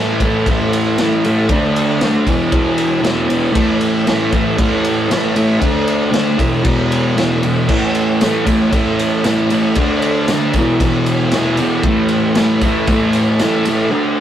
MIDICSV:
0, 0, Header, 1, 3, 480
1, 0, Start_track
1, 0, Tempo, 517688
1, 1386, Time_signature, 4, 2, 24, 8
1, 13167, End_track
2, 0, Start_track
2, 0, Title_t, "Distorted electric guitar"
2, 0, Program_c, 0, 30
2, 0, Note_on_c, 0, 45, 83
2, 0, Note_on_c, 0, 52, 97
2, 0, Note_on_c, 0, 57, 95
2, 194, Note_off_c, 0, 45, 0
2, 201, Note_off_c, 0, 52, 0
2, 205, Note_on_c, 0, 45, 84
2, 212, Note_on_c, 0, 52, 80
2, 213, Note_off_c, 0, 57, 0
2, 224, Note_on_c, 0, 57, 97
2, 433, Note_off_c, 0, 45, 0
2, 437, Note_off_c, 0, 52, 0
2, 444, Note_on_c, 0, 45, 95
2, 449, Note_on_c, 0, 52, 113
2, 451, Note_off_c, 0, 57, 0
2, 462, Note_on_c, 0, 57, 110
2, 907, Note_off_c, 0, 45, 0
2, 918, Note_on_c, 0, 45, 94
2, 921, Note_off_c, 0, 52, 0
2, 930, Note_off_c, 0, 57, 0
2, 932, Note_on_c, 0, 52, 96
2, 941, Note_on_c, 0, 57, 91
2, 1146, Note_off_c, 0, 45, 0
2, 1151, Note_off_c, 0, 52, 0
2, 1155, Note_off_c, 0, 57, 0
2, 1157, Note_on_c, 0, 45, 84
2, 1162, Note_on_c, 0, 52, 95
2, 1166, Note_on_c, 0, 57, 98
2, 1377, Note_off_c, 0, 45, 0
2, 1379, Note_off_c, 0, 52, 0
2, 1382, Note_off_c, 0, 57, 0
2, 1385, Note_on_c, 0, 50, 105
2, 1400, Note_on_c, 0, 57, 94
2, 1409, Note_on_c, 0, 62, 122
2, 1855, Note_off_c, 0, 50, 0
2, 1862, Note_off_c, 0, 57, 0
2, 1866, Note_on_c, 0, 50, 88
2, 1874, Note_on_c, 0, 57, 87
2, 1876, Note_off_c, 0, 62, 0
2, 1887, Note_on_c, 0, 62, 96
2, 2090, Note_off_c, 0, 50, 0
2, 2094, Note_off_c, 0, 57, 0
2, 2101, Note_off_c, 0, 62, 0
2, 2109, Note_on_c, 0, 40, 100
2, 2114, Note_on_c, 0, 47, 111
2, 2121, Note_on_c, 0, 52, 111
2, 2325, Note_off_c, 0, 40, 0
2, 2337, Note_off_c, 0, 47, 0
2, 2337, Note_on_c, 0, 40, 94
2, 2343, Note_off_c, 0, 52, 0
2, 2349, Note_on_c, 0, 47, 99
2, 2354, Note_on_c, 0, 52, 125
2, 2785, Note_off_c, 0, 40, 0
2, 2796, Note_on_c, 0, 40, 93
2, 2798, Note_off_c, 0, 47, 0
2, 2809, Note_on_c, 0, 47, 101
2, 2810, Note_off_c, 0, 52, 0
2, 2822, Note_on_c, 0, 52, 106
2, 3027, Note_off_c, 0, 40, 0
2, 3039, Note_on_c, 0, 40, 100
2, 3044, Note_off_c, 0, 47, 0
2, 3053, Note_off_c, 0, 52, 0
2, 3055, Note_on_c, 0, 47, 99
2, 3064, Note_on_c, 0, 52, 99
2, 3269, Note_off_c, 0, 47, 0
2, 3271, Note_off_c, 0, 52, 0
2, 3273, Note_on_c, 0, 45, 102
2, 3274, Note_off_c, 0, 40, 0
2, 3282, Note_on_c, 0, 52, 112
2, 3294, Note_on_c, 0, 57, 112
2, 3759, Note_off_c, 0, 45, 0
2, 3767, Note_off_c, 0, 52, 0
2, 3771, Note_on_c, 0, 45, 82
2, 3774, Note_off_c, 0, 57, 0
2, 3778, Note_on_c, 0, 52, 104
2, 3785, Note_on_c, 0, 57, 105
2, 3993, Note_off_c, 0, 45, 0
2, 4004, Note_on_c, 0, 45, 81
2, 4008, Note_off_c, 0, 52, 0
2, 4017, Note_off_c, 0, 57, 0
2, 4019, Note_on_c, 0, 52, 97
2, 4028, Note_on_c, 0, 57, 87
2, 4230, Note_off_c, 0, 45, 0
2, 4240, Note_off_c, 0, 52, 0
2, 4241, Note_on_c, 0, 45, 91
2, 4243, Note_off_c, 0, 57, 0
2, 4251, Note_on_c, 0, 52, 109
2, 4254, Note_on_c, 0, 57, 110
2, 4696, Note_off_c, 0, 45, 0
2, 4707, Note_on_c, 0, 45, 89
2, 4714, Note_off_c, 0, 52, 0
2, 4725, Note_on_c, 0, 52, 91
2, 4728, Note_off_c, 0, 57, 0
2, 4739, Note_on_c, 0, 57, 98
2, 4956, Note_off_c, 0, 45, 0
2, 4965, Note_off_c, 0, 52, 0
2, 4967, Note_on_c, 0, 45, 78
2, 4969, Note_off_c, 0, 57, 0
2, 4976, Note_on_c, 0, 52, 102
2, 4980, Note_on_c, 0, 57, 104
2, 5194, Note_off_c, 0, 45, 0
2, 5198, Note_off_c, 0, 57, 0
2, 5198, Note_on_c, 0, 50, 93
2, 5201, Note_off_c, 0, 52, 0
2, 5209, Note_on_c, 0, 57, 104
2, 5214, Note_on_c, 0, 62, 107
2, 5656, Note_off_c, 0, 50, 0
2, 5657, Note_off_c, 0, 57, 0
2, 5667, Note_on_c, 0, 50, 88
2, 5668, Note_on_c, 0, 57, 95
2, 5672, Note_off_c, 0, 62, 0
2, 5683, Note_on_c, 0, 62, 91
2, 5906, Note_off_c, 0, 50, 0
2, 5906, Note_off_c, 0, 57, 0
2, 5914, Note_off_c, 0, 62, 0
2, 5915, Note_on_c, 0, 40, 90
2, 5918, Note_on_c, 0, 47, 97
2, 5926, Note_on_c, 0, 52, 120
2, 6141, Note_off_c, 0, 40, 0
2, 6153, Note_on_c, 0, 40, 97
2, 6155, Note_off_c, 0, 47, 0
2, 6162, Note_off_c, 0, 52, 0
2, 6167, Note_on_c, 0, 47, 102
2, 6173, Note_on_c, 0, 52, 105
2, 6627, Note_off_c, 0, 40, 0
2, 6638, Note_on_c, 0, 40, 87
2, 6639, Note_off_c, 0, 47, 0
2, 6650, Note_on_c, 0, 47, 99
2, 6654, Note_off_c, 0, 52, 0
2, 6665, Note_on_c, 0, 52, 84
2, 6883, Note_off_c, 0, 40, 0
2, 6892, Note_off_c, 0, 47, 0
2, 6894, Note_on_c, 0, 40, 84
2, 6899, Note_off_c, 0, 52, 0
2, 6903, Note_on_c, 0, 47, 100
2, 6911, Note_on_c, 0, 52, 93
2, 7117, Note_off_c, 0, 47, 0
2, 7119, Note_off_c, 0, 40, 0
2, 7120, Note_off_c, 0, 52, 0
2, 7121, Note_on_c, 0, 45, 103
2, 7131, Note_on_c, 0, 52, 105
2, 7146, Note_on_c, 0, 57, 102
2, 7605, Note_off_c, 0, 45, 0
2, 7616, Note_on_c, 0, 45, 91
2, 7617, Note_off_c, 0, 52, 0
2, 7619, Note_off_c, 0, 57, 0
2, 7628, Note_on_c, 0, 52, 99
2, 7630, Note_on_c, 0, 57, 102
2, 7824, Note_off_c, 0, 45, 0
2, 7834, Note_off_c, 0, 52, 0
2, 7835, Note_on_c, 0, 45, 83
2, 7844, Note_off_c, 0, 57, 0
2, 7845, Note_on_c, 0, 52, 99
2, 7855, Note_on_c, 0, 57, 98
2, 8066, Note_off_c, 0, 45, 0
2, 8074, Note_off_c, 0, 52, 0
2, 8077, Note_on_c, 0, 45, 96
2, 8084, Note_off_c, 0, 57, 0
2, 8085, Note_on_c, 0, 52, 110
2, 8095, Note_on_c, 0, 57, 107
2, 8556, Note_off_c, 0, 45, 0
2, 8564, Note_off_c, 0, 52, 0
2, 8567, Note_on_c, 0, 45, 83
2, 8574, Note_off_c, 0, 57, 0
2, 8575, Note_on_c, 0, 52, 97
2, 8585, Note_on_c, 0, 57, 96
2, 8810, Note_off_c, 0, 45, 0
2, 8814, Note_off_c, 0, 52, 0
2, 8821, Note_on_c, 0, 45, 87
2, 8826, Note_on_c, 0, 52, 102
2, 8830, Note_off_c, 0, 57, 0
2, 8841, Note_on_c, 0, 57, 103
2, 9044, Note_off_c, 0, 45, 0
2, 9046, Note_off_c, 0, 52, 0
2, 9049, Note_off_c, 0, 57, 0
2, 9056, Note_on_c, 0, 50, 97
2, 9060, Note_on_c, 0, 57, 105
2, 9075, Note_on_c, 0, 62, 107
2, 9530, Note_off_c, 0, 50, 0
2, 9536, Note_off_c, 0, 57, 0
2, 9541, Note_on_c, 0, 50, 80
2, 9546, Note_off_c, 0, 62, 0
2, 9547, Note_on_c, 0, 57, 102
2, 9557, Note_on_c, 0, 62, 94
2, 9764, Note_off_c, 0, 50, 0
2, 9767, Note_off_c, 0, 57, 0
2, 9773, Note_off_c, 0, 62, 0
2, 9789, Note_on_c, 0, 40, 94
2, 9802, Note_on_c, 0, 47, 100
2, 9808, Note_on_c, 0, 52, 106
2, 10014, Note_off_c, 0, 40, 0
2, 10025, Note_on_c, 0, 40, 101
2, 10027, Note_off_c, 0, 47, 0
2, 10035, Note_off_c, 0, 52, 0
2, 10038, Note_on_c, 0, 47, 108
2, 10046, Note_on_c, 0, 52, 115
2, 10507, Note_off_c, 0, 40, 0
2, 10518, Note_on_c, 0, 40, 99
2, 10520, Note_off_c, 0, 47, 0
2, 10520, Note_off_c, 0, 52, 0
2, 10531, Note_on_c, 0, 47, 102
2, 10531, Note_on_c, 0, 52, 94
2, 10746, Note_off_c, 0, 47, 0
2, 10747, Note_off_c, 0, 40, 0
2, 10757, Note_on_c, 0, 47, 105
2, 10758, Note_on_c, 0, 40, 88
2, 10759, Note_off_c, 0, 52, 0
2, 10770, Note_on_c, 0, 52, 105
2, 10974, Note_off_c, 0, 47, 0
2, 10975, Note_off_c, 0, 40, 0
2, 10981, Note_off_c, 0, 52, 0
2, 10997, Note_on_c, 0, 45, 97
2, 11012, Note_on_c, 0, 52, 110
2, 11018, Note_on_c, 0, 57, 97
2, 11461, Note_off_c, 0, 45, 0
2, 11472, Note_on_c, 0, 45, 96
2, 11473, Note_off_c, 0, 52, 0
2, 11484, Note_on_c, 0, 52, 107
2, 11489, Note_off_c, 0, 57, 0
2, 11493, Note_on_c, 0, 57, 98
2, 11697, Note_off_c, 0, 45, 0
2, 11708, Note_on_c, 0, 45, 83
2, 11712, Note_off_c, 0, 52, 0
2, 11724, Note_off_c, 0, 57, 0
2, 11724, Note_on_c, 0, 52, 88
2, 11727, Note_on_c, 0, 57, 95
2, 11944, Note_off_c, 0, 45, 0
2, 11953, Note_off_c, 0, 52, 0
2, 11955, Note_on_c, 0, 45, 101
2, 11964, Note_on_c, 0, 52, 101
2, 11974, Note_off_c, 0, 57, 0
2, 11977, Note_on_c, 0, 57, 112
2, 12418, Note_off_c, 0, 45, 0
2, 12429, Note_on_c, 0, 45, 78
2, 12433, Note_off_c, 0, 52, 0
2, 12444, Note_on_c, 0, 52, 99
2, 12449, Note_off_c, 0, 57, 0
2, 12453, Note_on_c, 0, 57, 105
2, 12660, Note_off_c, 0, 45, 0
2, 12671, Note_on_c, 0, 45, 88
2, 12677, Note_off_c, 0, 52, 0
2, 12688, Note_on_c, 0, 52, 94
2, 12691, Note_off_c, 0, 57, 0
2, 12695, Note_on_c, 0, 57, 114
2, 12889, Note_off_c, 0, 45, 0
2, 12892, Note_on_c, 0, 50, 100
2, 12901, Note_off_c, 0, 52, 0
2, 12904, Note_off_c, 0, 57, 0
2, 12904, Note_on_c, 0, 57, 99
2, 12911, Note_on_c, 0, 62, 113
2, 13167, Note_off_c, 0, 50, 0
2, 13167, Note_off_c, 0, 57, 0
2, 13167, Note_off_c, 0, 62, 0
2, 13167, End_track
3, 0, Start_track
3, 0, Title_t, "Drums"
3, 188, Note_on_c, 9, 36, 91
3, 190, Note_on_c, 9, 51, 89
3, 281, Note_off_c, 9, 36, 0
3, 282, Note_off_c, 9, 51, 0
3, 430, Note_on_c, 9, 36, 117
3, 434, Note_on_c, 9, 51, 109
3, 523, Note_off_c, 9, 36, 0
3, 527, Note_off_c, 9, 51, 0
3, 677, Note_on_c, 9, 51, 88
3, 770, Note_off_c, 9, 51, 0
3, 909, Note_on_c, 9, 51, 109
3, 914, Note_on_c, 9, 38, 109
3, 1002, Note_off_c, 9, 51, 0
3, 1007, Note_off_c, 9, 38, 0
3, 1154, Note_on_c, 9, 51, 83
3, 1246, Note_off_c, 9, 51, 0
3, 1381, Note_on_c, 9, 51, 114
3, 1383, Note_on_c, 9, 36, 118
3, 1473, Note_off_c, 9, 51, 0
3, 1476, Note_off_c, 9, 36, 0
3, 1633, Note_on_c, 9, 51, 84
3, 1725, Note_off_c, 9, 51, 0
3, 1863, Note_on_c, 9, 51, 106
3, 1868, Note_on_c, 9, 38, 122
3, 1956, Note_off_c, 9, 51, 0
3, 1961, Note_off_c, 9, 38, 0
3, 2102, Note_on_c, 9, 36, 93
3, 2105, Note_on_c, 9, 51, 87
3, 2195, Note_off_c, 9, 36, 0
3, 2198, Note_off_c, 9, 51, 0
3, 2338, Note_on_c, 9, 51, 106
3, 2340, Note_on_c, 9, 36, 127
3, 2431, Note_off_c, 9, 51, 0
3, 2432, Note_off_c, 9, 36, 0
3, 2575, Note_on_c, 9, 51, 82
3, 2667, Note_off_c, 9, 51, 0
3, 2821, Note_on_c, 9, 51, 100
3, 2826, Note_on_c, 9, 38, 114
3, 2914, Note_off_c, 9, 51, 0
3, 2919, Note_off_c, 9, 38, 0
3, 3059, Note_on_c, 9, 51, 82
3, 3152, Note_off_c, 9, 51, 0
3, 3293, Note_on_c, 9, 51, 109
3, 3295, Note_on_c, 9, 36, 107
3, 3386, Note_off_c, 9, 51, 0
3, 3388, Note_off_c, 9, 36, 0
3, 3529, Note_on_c, 9, 51, 80
3, 3622, Note_off_c, 9, 51, 0
3, 3773, Note_on_c, 9, 51, 113
3, 3778, Note_on_c, 9, 38, 121
3, 3865, Note_off_c, 9, 51, 0
3, 3871, Note_off_c, 9, 38, 0
3, 4009, Note_on_c, 9, 51, 90
3, 4011, Note_on_c, 9, 36, 95
3, 4102, Note_off_c, 9, 51, 0
3, 4104, Note_off_c, 9, 36, 0
3, 4251, Note_on_c, 9, 36, 124
3, 4253, Note_on_c, 9, 51, 116
3, 4344, Note_off_c, 9, 36, 0
3, 4346, Note_off_c, 9, 51, 0
3, 4491, Note_on_c, 9, 51, 86
3, 4584, Note_off_c, 9, 51, 0
3, 4737, Note_on_c, 9, 51, 125
3, 4742, Note_on_c, 9, 38, 114
3, 4830, Note_off_c, 9, 51, 0
3, 4835, Note_off_c, 9, 38, 0
3, 4968, Note_on_c, 9, 51, 85
3, 5061, Note_off_c, 9, 51, 0
3, 5207, Note_on_c, 9, 36, 120
3, 5208, Note_on_c, 9, 51, 111
3, 5300, Note_off_c, 9, 36, 0
3, 5301, Note_off_c, 9, 51, 0
3, 5447, Note_on_c, 9, 51, 84
3, 5540, Note_off_c, 9, 51, 0
3, 5687, Note_on_c, 9, 51, 110
3, 5693, Note_on_c, 9, 38, 127
3, 5780, Note_off_c, 9, 51, 0
3, 5786, Note_off_c, 9, 38, 0
3, 5926, Note_on_c, 9, 36, 98
3, 5931, Note_on_c, 9, 51, 94
3, 6019, Note_off_c, 9, 36, 0
3, 6024, Note_off_c, 9, 51, 0
3, 6161, Note_on_c, 9, 51, 114
3, 6165, Note_on_c, 9, 36, 123
3, 6254, Note_off_c, 9, 51, 0
3, 6257, Note_off_c, 9, 36, 0
3, 6413, Note_on_c, 9, 51, 84
3, 6506, Note_off_c, 9, 51, 0
3, 6654, Note_on_c, 9, 51, 101
3, 6659, Note_on_c, 9, 38, 112
3, 6746, Note_off_c, 9, 51, 0
3, 6752, Note_off_c, 9, 38, 0
3, 6888, Note_on_c, 9, 51, 80
3, 6981, Note_off_c, 9, 51, 0
3, 7128, Note_on_c, 9, 36, 114
3, 7128, Note_on_c, 9, 49, 103
3, 7137, Note_on_c, 9, 54, 30
3, 7221, Note_off_c, 9, 36, 0
3, 7221, Note_off_c, 9, 49, 0
3, 7230, Note_off_c, 9, 54, 0
3, 7368, Note_on_c, 9, 51, 83
3, 7461, Note_off_c, 9, 51, 0
3, 7611, Note_on_c, 9, 54, 93
3, 7612, Note_on_c, 9, 51, 109
3, 7617, Note_on_c, 9, 38, 108
3, 7703, Note_off_c, 9, 54, 0
3, 7705, Note_off_c, 9, 51, 0
3, 7710, Note_off_c, 9, 38, 0
3, 7850, Note_on_c, 9, 36, 98
3, 7852, Note_on_c, 9, 51, 94
3, 7858, Note_on_c, 9, 54, 84
3, 7943, Note_off_c, 9, 36, 0
3, 7944, Note_off_c, 9, 51, 0
3, 7951, Note_off_c, 9, 54, 0
3, 8091, Note_on_c, 9, 36, 119
3, 8091, Note_on_c, 9, 51, 112
3, 8096, Note_on_c, 9, 54, 73
3, 8184, Note_off_c, 9, 36, 0
3, 8184, Note_off_c, 9, 51, 0
3, 8189, Note_off_c, 9, 54, 0
3, 8211, Note_on_c, 9, 54, 29
3, 8303, Note_off_c, 9, 54, 0
3, 8337, Note_on_c, 9, 54, 76
3, 8338, Note_on_c, 9, 51, 89
3, 8429, Note_off_c, 9, 54, 0
3, 8431, Note_off_c, 9, 51, 0
3, 8568, Note_on_c, 9, 51, 116
3, 8573, Note_on_c, 9, 38, 110
3, 8573, Note_on_c, 9, 54, 92
3, 8660, Note_off_c, 9, 51, 0
3, 8666, Note_off_c, 9, 38, 0
3, 8666, Note_off_c, 9, 54, 0
3, 8702, Note_on_c, 9, 54, 29
3, 8794, Note_off_c, 9, 54, 0
3, 8808, Note_on_c, 9, 54, 72
3, 8811, Note_on_c, 9, 51, 87
3, 8901, Note_off_c, 9, 54, 0
3, 8904, Note_off_c, 9, 51, 0
3, 9042, Note_on_c, 9, 51, 115
3, 9053, Note_on_c, 9, 36, 112
3, 9058, Note_on_c, 9, 54, 31
3, 9135, Note_off_c, 9, 51, 0
3, 9146, Note_off_c, 9, 36, 0
3, 9151, Note_off_c, 9, 54, 0
3, 9291, Note_on_c, 9, 51, 87
3, 9384, Note_off_c, 9, 51, 0
3, 9529, Note_on_c, 9, 51, 111
3, 9534, Note_on_c, 9, 38, 116
3, 9536, Note_on_c, 9, 54, 89
3, 9621, Note_off_c, 9, 51, 0
3, 9627, Note_off_c, 9, 38, 0
3, 9629, Note_off_c, 9, 54, 0
3, 9767, Note_on_c, 9, 51, 87
3, 9773, Note_on_c, 9, 36, 98
3, 9787, Note_on_c, 9, 54, 78
3, 9860, Note_off_c, 9, 51, 0
3, 9866, Note_off_c, 9, 36, 0
3, 9880, Note_off_c, 9, 54, 0
3, 10016, Note_on_c, 9, 36, 116
3, 10017, Note_on_c, 9, 51, 105
3, 10019, Note_on_c, 9, 54, 76
3, 10109, Note_off_c, 9, 36, 0
3, 10109, Note_off_c, 9, 51, 0
3, 10112, Note_off_c, 9, 54, 0
3, 10144, Note_on_c, 9, 54, 27
3, 10236, Note_off_c, 9, 54, 0
3, 10256, Note_on_c, 9, 51, 84
3, 10263, Note_on_c, 9, 54, 75
3, 10349, Note_off_c, 9, 51, 0
3, 10355, Note_off_c, 9, 54, 0
3, 10393, Note_on_c, 9, 54, 26
3, 10486, Note_off_c, 9, 54, 0
3, 10490, Note_on_c, 9, 51, 113
3, 10496, Note_on_c, 9, 38, 121
3, 10512, Note_on_c, 9, 54, 99
3, 10583, Note_off_c, 9, 51, 0
3, 10589, Note_off_c, 9, 38, 0
3, 10605, Note_off_c, 9, 54, 0
3, 10728, Note_on_c, 9, 51, 75
3, 10742, Note_on_c, 9, 54, 69
3, 10821, Note_off_c, 9, 51, 0
3, 10834, Note_off_c, 9, 54, 0
3, 10970, Note_on_c, 9, 51, 105
3, 10973, Note_on_c, 9, 36, 125
3, 10978, Note_on_c, 9, 54, 28
3, 11063, Note_off_c, 9, 51, 0
3, 11066, Note_off_c, 9, 36, 0
3, 11071, Note_off_c, 9, 54, 0
3, 11205, Note_on_c, 9, 51, 77
3, 11298, Note_off_c, 9, 51, 0
3, 11451, Note_on_c, 9, 51, 106
3, 11457, Note_on_c, 9, 38, 120
3, 11477, Note_on_c, 9, 54, 87
3, 11544, Note_off_c, 9, 51, 0
3, 11550, Note_off_c, 9, 38, 0
3, 11570, Note_off_c, 9, 54, 0
3, 11694, Note_on_c, 9, 51, 82
3, 11698, Note_on_c, 9, 36, 108
3, 11707, Note_on_c, 9, 54, 76
3, 11787, Note_off_c, 9, 51, 0
3, 11790, Note_off_c, 9, 36, 0
3, 11800, Note_off_c, 9, 54, 0
3, 11935, Note_on_c, 9, 51, 110
3, 11939, Note_on_c, 9, 36, 115
3, 11960, Note_on_c, 9, 54, 71
3, 12028, Note_off_c, 9, 51, 0
3, 12032, Note_off_c, 9, 36, 0
3, 12053, Note_off_c, 9, 54, 0
3, 12174, Note_on_c, 9, 51, 85
3, 12189, Note_on_c, 9, 54, 83
3, 12266, Note_off_c, 9, 51, 0
3, 12281, Note_off_c, 9, 54, 0
3, 12306, Note_on_c, 9, 54, 33
3, 12399, Note_off_c, 9, 54, 0
3, 12418, Note_on_c, 9, 51, 110
3, 12423, Note_on_c, 9, 38, 112
3, 12432, Note_on_c, 9, 54, 114
3, 12511, Note_off_c, 9, 51, 0
3, 12516, Note_off_c, 9, 38, 0
3, 12524, Note_off_c, 9, 54, 0
3, 12568, Note_on_c, 9, 54, 30
3, 12658, Note_on_c, 9, 51, 84
3, 12661, Note_off_c, 9, 54, 0
3, 12679, Note_on_c, 9, 54, 76
3, 12751, Note_off_c, 9, 51, 0
3, 12772, Note_off_c, 9, 54, 0
3, 13167, End_track
0, 0, End_of_file